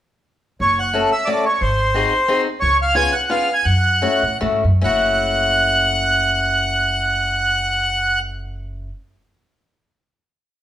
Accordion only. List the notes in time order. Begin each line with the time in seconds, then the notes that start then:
0.61 C#5
0.79 F#5
1.12 E5
1.25 D5
1.45 C#5
1.61 C5
2.60 C#5
2.82 F5
2.95 G#5
3.13 F#5
3.31 F5
3.53 G#5
3.65 F#5
4.84 F#5